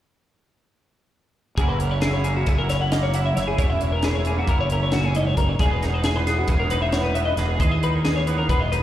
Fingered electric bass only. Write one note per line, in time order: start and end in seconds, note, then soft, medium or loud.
1.57 2.43 F#1 medium
2.48 3.32 F#1 loud
3.37 3.58 F#1 medium
3.58 4.43 E1 medium
4.48 5.33 F#1 loud
5.37 5.58 F#1 medium
5.60 6.44 E1 medium
6.48 7.33 E1 loud
7.37 7.58 E1 medium
7.60 8.45 D#2 medium
8.49 8.83 E1 loud